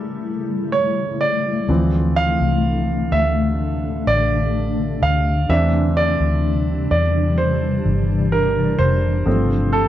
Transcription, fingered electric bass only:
1.69 D2
2.40 C2
3.12 D2
4.07 A1
5.02 D2
5.49 E2
6.20 D2
6.91 E2
7.85 G1
8.79 F1
9.26 G1

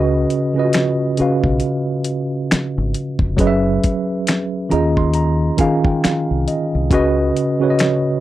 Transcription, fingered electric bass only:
Already playing: C#2
1.20 muted fingered electric bass stroke
1.45 B1
2.52 muted fingered electric bass stroke
2.78 G#1
3.20 F1
3.39 F#1
4.73 D#2
6.05 muted fingered electric bass stroke
6.31 C2
6.75 C2
6.92 C#2

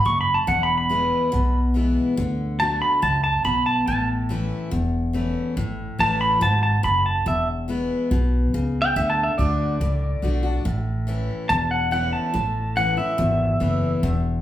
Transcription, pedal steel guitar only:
0.06 C#6
0.21 B5
0.34 A5
0.48 F#5
0.63 B5
0.78 B5
2.60 A5
2.82 B5
3.03 A5
3.24 A5
3.45 B5
3.66 A5
3.88 A5
6.00 A5
6.21 B5
6.42 A5
6.63 A5
6.84 B5
7.06 A5
7.28 E5
8.82 G5
8.97 E5
9.10 A5
9.23 E5
9.38 D5
11.49 A5
11.71 F#5
11.92 F#5
12.13 A5
12.77 F#5
12.98 E5

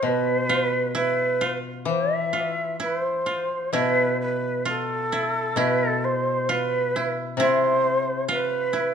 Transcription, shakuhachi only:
0.04 B4
0.95 B4
1.87 C5
2.16 E5
2.82 B4
3.00 C5
3.75 B4
4.21 B4
4.68 A4
5.58 B4
5.87 A4
6.04 C5
6.49 B4
7.38 C5
8.30 B4

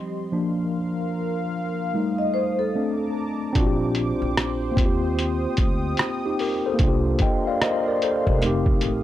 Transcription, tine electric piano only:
Already playing: F3 G3 C4
0.32 F3 A#3 D4
1.94 G3 A3 D#4
2.75 A3 C4 D4
3.53 C4 D4
3.58 F4 F#4
3.67 G4
4.72 A#3
4.76 C4
4.81 F4
4.86 G4
6.26 D#4 G4
6.40 G4 A#4
6.66 A4 C5
6.74 A#3
6.79 D4
6.83 F4
6.88 G4
7.22 D#5 G5
7.47 D5 F5
7.62 C5 D#5
7.88 A#4 D5
8.03 A4 C5
8.28 G4 A#4
8.39 A3 C4
8.44 D#4 G4

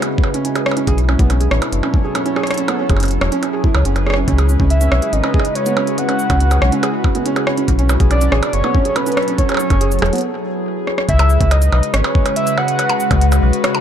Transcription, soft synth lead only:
4.70 E5
5.13 D#5
5.55 C#5
5.98 F#5
8.11 D5
8.46 D5
8.53 C#5
8.89 C#5
8.96 B4
9.38 C#5
11.09 E5
11.51 D#5
11.94 C#5
12.36 E5
12.58 F#5

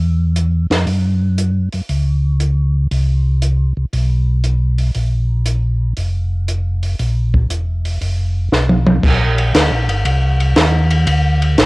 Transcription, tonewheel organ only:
Already playing: E2
0.70 F2
0.87 F#2
1.73 F#2
1.89 C#2
2.91 C2
3.77 C2
3.93 B1
4.95 A#1
5.97 F1
6.99 A#1
7.50 E1
8.01 F1
8.52 B1
9.03 A#1
9.54 D2
9.72 A#1
9.88 G1
10.05 C2
10.56 D#2
11.07 D2
11.58 A1

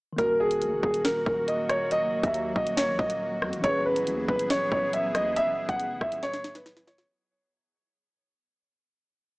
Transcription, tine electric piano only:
0.13 D#3 A#3
0.20 F#4 A#4
3.58 E3 C#4
3.66 G#4 B4

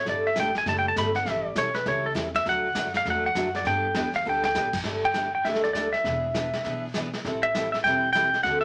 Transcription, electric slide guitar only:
0.09 D5
0.27 E5
0.40 G5
0.58 G#5
0.69 A5
0.79 G5
0.88 A5
0.98 B5
1.16 F#5
1.30 E5
1.46 D5
1.58 C#5
1.75 B4
1.88 C#5
2.06 A4
2.36 E5
2.49 F#5
2.97 F5
3.10 F#5
3.26 F#5
3.56 D5
3.67 G5
4.16 F5
4.29 G5
4.45 G5
5.05 G5
5.35 G5
5.45 E5
5.64 D5
5.73 D5
5.93 E5
7.43 E5
7.72 E5
7.84 G5
8.13 G5
8.43 F#5
8.61 E5

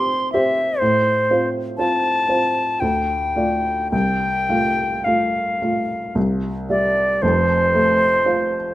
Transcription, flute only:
Already playing: C6
0.32 E5
0.79 C5
1.78 A5
2.80 G5
3.91 G5
5.04 F5
6.70 D5
7.22 C5

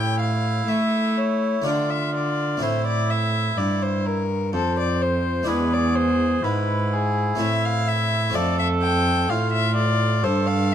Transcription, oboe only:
Already playing: E4
1.65 F4
2.62 E4
4.54 C5
5.48 G#4
6.43 E4
8.35 A4
9.30 F4
10.24 A4

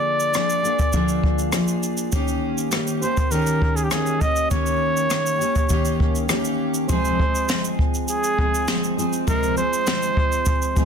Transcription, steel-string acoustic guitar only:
Already playing: D3 F3 A#3 D4 G#4
0.34 F3 A#3 D4 G#4
0.62 A#3 D4 G#4
0.93 D3 F3 A#3 D4 G#4
1.52 F3 A#3 D4 G#4
2.12 D#3 A#3 C#4 G4
2.71 D#3 A#3 C#4 G4
3.01 A#3 C#4 G4
3.30 D#3 A#3 C#4 G4
3.91 D#3 A#3 C#4 G4
4.20 A#3 C#4 G4
4.50 D#3 A#3 C#4 G4
5.10 D#3 A#3 C#4 G4
5.39 A#3 C#4 G4
5.69 D#3 A#3 C#4 G4
6.28 D#3 A#3 C#4 G4
6.88 F2 C3 F3 G#3 C4 G#4
7.19 F3 G#3 C4 G#4
7.48 F3 G#3 C4 G#4
8.38 F3 G#3 C4 G#4
8.68 F3 G#3 C4 G#4
8.97 F3 G#3 C4 G#4
9.27 F2 C3 F3 G#3 C4 G#4
9.56 F3 G#3 C4 G#4
9.86 F3 G#3
10.75 F3 G#3 C4 G#4

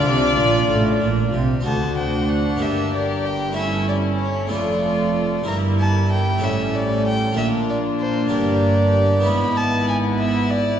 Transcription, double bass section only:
0.04 C2
0.37 A#1
0.69 A1
1.02 A#1
1.34 C2
1.66 D2
2.61 G1
4.52 F1
5.47 G1
6.42 A1
7.37 A#1
8.32 G1
9.26 G#1

